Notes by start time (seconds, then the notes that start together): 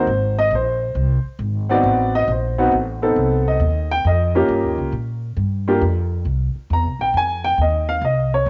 Already playing: C5
0.07 G#1
0.39 D#5
0.51 A#1
0.55 C5
0.95 C2
1.25 muted upright bass stroke
1.39 G#1
1.69 B3 C4 D#4 F#4 D5
1.83 A1
2.15 D#5
2.28 A#1
2.32 C5
2.58 B3 C4 D#4 F#4
2.72 A1
3.02 B3 C4 D#4 A4
3.16 C2
3.48 D#5
3.60 D#2
3.92 G5
4.05 F2 D#5
4.35 A#3 C#4 F4 G4
4.48 G2
4.63 D#2
4.78 C#2
4.92 A#2
5.37 G2
5.68 A#3 D4 F4 G4
5.81 F2
6.25 C2
6.55 muted upright bass stroke
6.70 E2 A#5
6.85 C2
6.99 A#1 G5
7.14 F2 G#5
7.44 G5
7.58 D#2 D#5
7.89 F5
8.01 C2 D#5
8.34 C#5
8.46 G#1